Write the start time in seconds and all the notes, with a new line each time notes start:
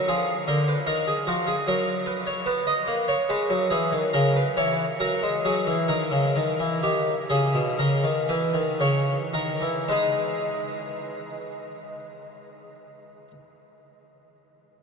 0.08 F3 G#4
0.47 D3 A#4
0.68 B4
0.87 D#3 A#4
1.07 G#4
1.27 F3 F#4
1.47 G#4
1.67 F#3 A#4
2.06 B4
2.27 C#5
2.46 B3 B4
2.67 D#5
2.87 A#3
3.08 C#5
3.29 G#3 B4
3.50 F#3
3.70 E3 G#4
3.92 D#3
4.13 C#3 A#4
4.36 B4
4.57 E3 C#5
5.00 F#3 A#4
5.23 G#3
5.45 F#3 G#4
5.67 E3
5.88 D#3 A#4
6.11 C#3
6.36 D#3
6.60 E3
6.83 D#3 G4
7.30 C#3 G#4
7.54 B2
7.79 C#3 A#4
8.04 D#3
8.29 E3 B4
8.54 D#3
8.80 C#3 C#5
9.33 D#3 A#4
9.61 E3
9.88 G#3 D#4 G#4 B4